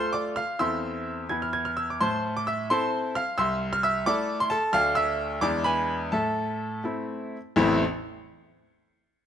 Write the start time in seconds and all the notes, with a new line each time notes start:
Already playing: A3 F4 A4 C5 C6
0.13 D5 D6
0.36 F5 F6
0.59 E2 C4 E4 A4 E5 C6 E6
1.29 E2 B3 E4 B4 G#6
1.42 F6
1.53 G#6
1.65 F6
1.77 E6
1.90 D6
2.01 A2 C5 A5 C6
2.37 D6
2.47 E5 E6
2.70 C4 E4 A4 C5 A5 C6
3.15 F5 F6
3.38 C2 E5 C6 E6
3.73 F6
3.83 E5 E6
4.06 A3 E4 A4 D5 D6
4.40 C6
4.50 A4 A5
4.73 D2 A3 D4 A4 F5 F6
4.95 E5 E6
5.41 E2 G#3 D4 E4 D5 D6
5.64 B4 G#5 B5
6.12 A2 A4 E5 A5
6.84 A3 C4 E4
7.56 A1 E2 E3 A3 C4 E4